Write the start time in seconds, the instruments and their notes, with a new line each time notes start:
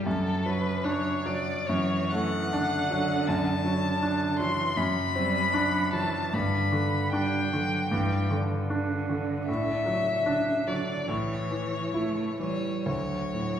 0.06 grand piano F#2, cello F#3, violin A4
0.45 grand piano F#3, violin B4
0.84 cello F#3, grand piano D4, violin C#5
1.26 grand piano F#3, violin D5
1.67 grand piano F#2, cello E3, violin C#5
2.11 grand piano A3, violin F#5
2.53 cello D3, grand piano D4
2.91 grand piano F#3
3.27 grand piano F#2, violin A5
3.65 grand piano F#3
4.02 cello D3, grand piano D4
4.39 cello E3, grand piano F#3, violin C6
4.77 grand piano F#2, cello F#3, violin B5
5.15 cello G3, grand piano C4
5.54 cello F#3, grand piano D4
5.93 cello E3, grand piano F#3, violin A5
6.33 grand piano G2, cello D3, violin B5
6.72 grand piano D3
7.13 cello G3, grand piano D4, violin G5
7.53 grand piano D3, cello F#3
7.91 grand piano G2, cello E3
8.31 grand piano D3, cello D3
8.70 grand piano D4
9.10 grand piano D3
9.47 grand piano A2, violin E5
9.86 grand piano F#3
10.26 cello C#3, grand piano D4
10.67 cello D3, grand piano F#3, violin D5
11.08 grand piano A2, cello E3, violin C#5
11.51 grand piano E3
11.94 cello A3, grand piano E4
12.40 grand piano E3, cello G3, violin C#5
12.85 grand piano D2, cello F#3, violin C#5
13.33 grand piano A2